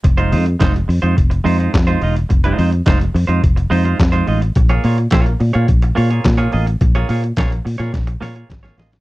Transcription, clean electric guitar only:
\new Staff \with { instrumentName = "Clean electric guitar" } { \time 4/4 \key f \minor \tempo 4 = 106 r16 <aes ees' f' c''>16 <aes ees' f' c''>16 r16 <aes ees' f' c''>16 r8 <aes ees' f' c''>16 r8 <aes ees' f' c''>16 <aes ees' f' c''>16 r16 <aes ees' f' c''>16 <aes ees' f' ees''>16 r16 | r16 <aes ees' f' c''>16 <aes ees' f' c''>16 r16 <aes ees' f' c''>16 r8 <aes ees' f' c''>16 r8 <aes ees' f' c''>16 <aes ees' f' c''>16 r16 <aes ees' f' c''>16 <aes ees' f' ees''>16 r16 | r16 <bes f' aes' des''>16 <bes f' aes' des''>16 r16 <bes f' aes' des''>16 r8 <bes f' aes' des''>16 r8 <bes f' aes' des''>16 <bes f' aes' des''>16 r16 <bes f' aes' des''>16 <bes f' aes' ees''>16 r16 | r16 <bes f' aes' des''>16 <bes f' aes' des''>16 r16 <bes f' aes' des''>16 r8 <bes f' aes' des''>16 r8 <bes f' aes' des''>16 <bes f' des''>16 r16 <bes f' aes' des''>16 <bes f' aes' ees''>16 r16 | }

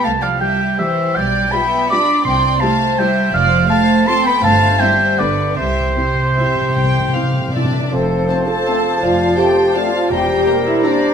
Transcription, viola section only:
\new Staff \with { instrumentName = "Viola section" } { \time 3/4 \key c \major \tempo 4 = 161 r4 <g g'>4 <g g'>4 | r4 <g f'>4 <g f'>4 | r4 <g e'>4 <g e'>4 | r4 <a f'>4 <a f'>4 |
r4 <c' e'>4 <b d'>4 | r4 <c' e'>4 <c' e'>4 | r4 <c' e'>4 <c' d' e'>4 | \key f \major c'4. a'4. |
f'4 g'4 f'4 | g'4. e'8 d'4 | }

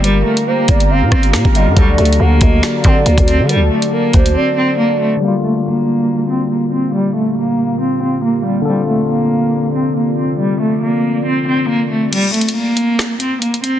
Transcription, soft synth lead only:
\new Staff \with { instrumentName = "Soft synth lead" } { \time 4/4 \key g \minor \tempo 4 = 139 bes'4 c''8 d''8 f''4. ees''8 | d''4 fis''8 ees''8 d''2 | a'4 bes'8 c''8 d''2 | r1 |
r1 | r1 | r1 | r1 | }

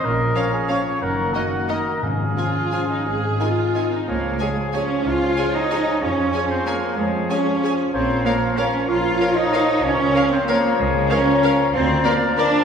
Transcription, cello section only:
\new Staff \with { instrumentName = "Cello section" } { \time 3/4 \key des \major \tempo 4 = 184 bes,4 r2 | ges,4 r2 | aes,4 r2 | aes,4 r2 |
bes4 aes4 des'4 | f'4. ees'4. | des'4. c'8 bes4 | aes4 des'4. r8 |
c'4 bes4 des'4 | f'4. ees'4. | des'4. c'8 bes4 | aes4 des'4. r8 |
\key bes \lydian c'4 bes4 d'4 | }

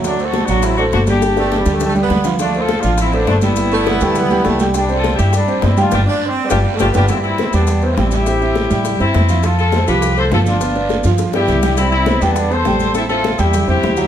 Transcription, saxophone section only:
\new Staff \with { instrumentName = "Saxophone section" } { \time 4/4 \key c \major \tempo 4 = 205 r1 | r8 a8~ \tuplet 3/2 { a16 g8. a8~ a16 a8. b8~ } b8. r16 | r1 | r8 a8 b8 a8 b4 a8. r16 |
r1 | r8 d'8~ \tuplet 3/2 { d'16 c'4 g16~ g4~ g16 a16~ a8 b4 } | r1 | r1 |
r1 | r1 | r1 | r1 | }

